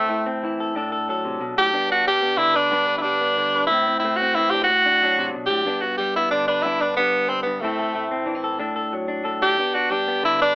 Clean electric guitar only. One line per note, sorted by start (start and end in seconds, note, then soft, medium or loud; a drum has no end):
0.00 0.74 A2 medium
0.00 0.25 C4 medium
0.00 0.59 A4 medium
0.09 0.74 A3 medium
0.09 0.43 E4 medium
0.26 0.74 C4 medium
0.43 0.74 E3 medium
0.43 0.75 E4 medium
0.60 0.75 A4 medium
0.75 1.40 A2 medium
0.75 1.73 D4 medium
0.75 0.91 A4 medium
0.92 1.09 A4 medium
1.09 1.73 F#3 medium
1.09 1.73 A4 medium
1.25 1.42 C3 medium
1.41 1.57 B2 medium
1.57 1.73 A2 medium
1.73 2.70 G2 medium
1.73 2.21 B3 medium
1.73 1.88 D4 medium
1.90 2.06 D4 medium
2.07 3.03 G3 medium
2.07 2.37 D4 medium
2.22 2.71 B3 medium
2.37 3.36 D3 medium
2.37 2.72 D4 medium
2.54 2.72 B4 medium
2.71 3.70 G2 medium
2.71 3.20 B3 medium
2.71 3.04 D4 medium
2.71 2.86 B4 medium
2.87 3.54 B4 medium
3.04 3.68 G3 medium
3.04 3.37 D4 medium
3.21 3.69 B3 medium
3.37 3.69 D3 medium
3.37 3.71 D4 medium
3.55 3.69 B4 medium
3.71 4.67 A2 medium
3.71 3.86 C4 medium
3.88 4.04 C4 medium
4.04 4.67 A3 medium
4.04 4.20 C4 medium
4.21 4.36 C4 medium
4.36 4.67 E3 medium
4.36 4.68 C4 medium
4.54 4.62 D4 medium
4.62 4.70 E4 medium
4.69 5.34 A2 medium
4.69 muted clean electric guitar stroke medium
4.86 5.02 D4 medium
5.02 5.65 F#3 medium
5.02 5.66 D4 medium
5.18 5.35 C3 medium
5.34 5.50 B2 medium
5.50 5.65 A2 medium
5.65 6.63 G2 medium
5.65 6.16 B3 medium
5.65 5.82 D4 medium
5.84 muted clean electric guitar stroke medium
6.00 6.97 G3 medium
6.17 6.63 B3 medium
6.32 7.61 D3 medium
6.32 6.65 D4 medium
6.49 6.81 B4 medium
6.64 7.45 G2 medium
6.64 7.61 B3 medium
6.64 6.97 D4 medium
6.82 7.62 B4 medium
6.98 7.62 G3 medium
6.98 7.64 D4 medium
7.46 7.62 G2 medium
7.63 8.58 A2 medium
7.63 8.10 C4 medium
7.63 7.94 E4 medium
7.63 7.78 A4 medium
7.79 8.43 A4 medium
7.95 8.59 A3 medium
7.95 8.26 E4 medium
8.11 8.59 C4 medium
8.26 8.58 E3 medium
8.26 8.35 D4 medium
8.35 8.60 E4 medium
8.44 8.59 A4 medium
8.59 9.23 A2 medium
8.59 9.07 D4 medium
8.59 8.75 A4 medium
8.76 8.93 A4 medium
8.93 9.57 F#3 medium
9.08 9.41 D4 medium
9.24 9.56 A2 medium
9.24 9.56 A4 medium
9.42 9.57 D4 medium
9.59 10.07 B3 medium
9.59 9.74 D4 medium
9.59 muted clean electric guitar stroke medium
9.75 9.90 D4 medium
9.90 10.55 G3 medium
9.90 10.23 D4 medium
10.08 10.55 B3 medium
10.23 10.55 D3 medium
10.23 10.55 D4 medium
10.41 10.55 B4 medium